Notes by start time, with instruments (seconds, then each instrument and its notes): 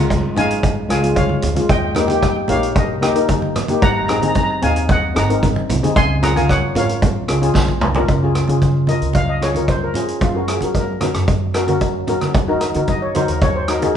Already playing: upright bass C#2, steel pan G#3 C#4 F4 F#5 A#5
0.10 kick, closed hi-hat
0.35 upright bass G#1, steel pan G#3 C#4 D#4 F5 G#5, closed hi-hat, low conga
0.51 closed hi-hat
0.63 kick, closed hi-hat
0.89 upright bass C#2, steel pan G#3 C#4 F4 F5 G#5, cross-stick, closed hi-hat
1.02 steel pan G#3 C#4 F4, closed hi-hat
1.16 steel pan C#5 F5, kick, closed hi-hat, high conga
1.29 high conga
1.42 upright bass D2, closed hi-hat, low conga
1.55 steel pan G#3 C#4 F4, closed hi-hat, high conga
1.69 upright bass D#2, steel pan D#5 G5, kick, closed hi-hat
1.78 steel pan G5
1.84 steel pan G5
1.91 steel pan G5, low conga
1.95 steel pan A#3 D#4 G4, cross-stick, closed hi-hat
2.00 steel pan G5
2.07 steel pan A#3 D#4 G4 G5, closed hi-hat, high conga
2.15 steel pan G5
2.21 steel pan G5, kick, cross-stick, closed hi-hat
2.29 steel pan G5
2.37 steel pan G5
2.48 upright bass A#1, steel pan A#3 D#4 G4 C#5 F5, closed hi-hat, low conga
2.63 closed hi-hat
2.76 steel pan A#4 D#5, kick, closed hi-hat
3.01 upright bass D#2, steel pan A#3 D#4 G4 D#5 G5, cross-stick, closed hi-hat
3.15 steel pan A#3 D#4 A#4, closed hi-hat
3.28 kick, closed hi-hat, high conga
3.42 high conga
3.56 upright bass D#3, cross-stick, closed hi-hat, low conga
3.68 steel pan A#3 D#4 G4, closed hi-hat, high conga
3.82 upright bass G#1, steel pan F#5 A#5, kick, closed hi-hat
3.90 steel pan A#5
3.98 steel pan A#5
4.05 steel pan C4 A#5, low conga
4.09 steel pan D#4 G#4, cross-stick, closed hi-hat
4.14 steel pan A#5
4.20 steel pan C4 D#4 G#4 A#5, closed hi-hat, high conga
4.28 steel pan A#5
4.35 steel pan A#5, kick, closed hi-hat
4.44 steel pan A#5
4.50 steel pan A#5
4.62 upright bass D#2, steel pan C4 D#4 G#4 F5 G#5, closed hi-hat, low conga
4.76 closed hi-hat
4.89 steel pan D#5 F#5, kick, closed hi-hat
5.15 upright bass G#1, steel pan C4 D#4 G#4 F#5 A#5, cross-stick, closed hi-hat
5.29 steel pan C4 D#4 A#4, closed hi-hat
5.43 kick, closed hi-hat, high conga
5.56 high conga
5.69 upright bass C2, closed hi-hat, low conga
5.83 steel pan C4 D#4 G#4, closed hi-hat, high conga
5.96 upright bass C#2, steel pan G#5 C6, kick, closed hi-hat
6.22 steel pan C#4 F4 G#4 F#5 A#5, cross-stick, closed hi-hat, low conga
6.36 steel pan C#4 F4 A#4 F5 G#5, closed hi-hat, high conga
6.49 steel pan C#5 F#5, kick, cross-stick, closed hi-hat
6.75 upright bass G#1, steel pan C#4 F4 A#4 C#5 F5, closed hi-hat, low conga
6.89 closed hi-hat
7.02 kick, closed hi-hat, low conga
7.28 upright bass C#2, steel pan C#4 F4 G#4, cross-stick, closed hi-hat
7.42 steel pan C#4 F4 G#4, closed hi-hat
7.54 upright bass A#1, kick, snare, high conga
7.68 high conga
7.81 upright bass C2, mid tom, low conga
7.95 steel pan C#4 F4 A#4, floor tom, high conga
8.08 upright bass C#2, kick, closed hi-hat, low conga
8.23 steel pan C#4 F4 G#4
8.35 cross-stick, closed hi-hat
8.48 upright bass C#3, steel pan C#4 F4 G#4, closed hi-hat, high conga
8.62 kick, closed hi-hat
8.87 steel pan C#4 F4 A#4 D#5, closed hi-hat, high conga, low conga
9.01 upright bass C#2, closed hi-hat
9.13 steel pan F5, kick, closed hi-hat, low conga
9.29 steel pan D#5
9.41 steel pan C#4 F4 G#4 C#5, cross-stick, closed hi-hat
9.54 steel pan C#4 F4 A#4, closed hi-hat, high conga
9.68 steel pan C5, kick, closed hi-hat
9.84 steel pan A#4
9.94 steel pan C#4 F4 G#4, closed hi-hat, low conga
10.08 closed hi-hat
10.21 upright bass F#2, steel pan F4, kick, closed hi-hat, low conga
10.34 steel pan C#4 F#4 A#4
10.48 steel pan G#4, cross-stick, closed hi-hat
10.61 upright bass F#3, steel pan C#4 F#4 A#4, closed hi-hat, high conga
10.75 steel pan A#4, kick, closed hi-hat
11.01 steel pan C#4 F#4 A#4, cross-stick, closed hi-hat, high conga, low conga
11.14 upright bass F#2, cross-stick, closed hi-hat
11.28 kick, closed hi-hat, low conga
11.54 steel pan C#4 F#4 A#4, cross-stick, closed hi-hat
11.67 steel pan C#4 F#4 A#4, closed hi-hat, high conga
11.81 kick, closed hi-hat
12.07 steel pan C#4 F#4 A#4, closed hi-hat, low conga
12.21 cross-stick, closed hi-hat, high conga
12.34 upright bass D#2, kick, closed hi-hat, low conga
12.48 steel pan D#4 F#4 A#4
12.61 cross-stick, closed hi-hat
12.74 upright bass D#3, steel pan D#4 F#4 A#4, closed hi-hat, high conga
12.87 steel pan D#5, kick, closed hi-hat
13.02 steel pan C#5
13.15 steel pan D#4 F#4 A#4 C5, closed hi-hat, high conga, low conga
13.28 upright bass D#2, steel pan A#4, closed hi-hat
13.41 steel pan C#5, kick, closed hi-hat, low conga
13.56 steel pan C5
13.68 steel pan D#4 F#4 A#4, cross-stick, closed hi-hat
13.81 steel pan D#4 F#4 G#4 A#4, closed hi-hat, high conga